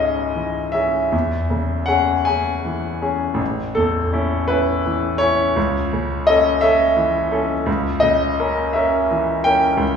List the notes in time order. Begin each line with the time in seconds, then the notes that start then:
Already playing: C#2 G#2 C#4 G#4 C#5 D#5
0.35 E3
0.72 C#4 G#4 E5
1.12 E2
1.50 C#3
1.86 C#4 G#4 F#5
2.25 C#4 G#4 G#5
2.65 E3
3.02 C#4 G#4
3.34 A1
3.75 E2 A4
4.13 C#4 E4
4.48 C#4 E4 B4
4.86 E3
5.18 C#4 E4 C#5
5.56 C#2
5.93 C#3
6.27 C#4 A4 D#5
6.61 C#4 A4 E5
6.97 E3
7.31 C#4 A4
7.66 C#2
8.00 C#3 D#5
8.40 C#4 A#4
8.73 C#4 A#4 E5
9.11 E3
9.44 C#4 A#4 G5
9.77 C#2